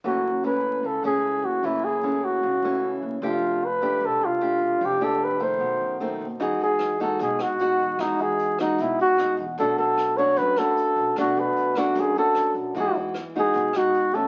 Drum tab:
HH |--------|--------|--------|--------|
SD |--------|--------|--------|--------|
BD |--------|--------|--------|--------|

HH |xxxxxxxx|xxxxxxxx|xxxxxxxx|xxxxxxxx|
SD |--r--r--|r--r--r-|--r--r--|r--r--r-|
BD |o--oo--o|o--oo--o|o--oo--o|o--oo--o|

HH |xxxxxxxx|
SD |--r--r--|
BD |o--oo--o|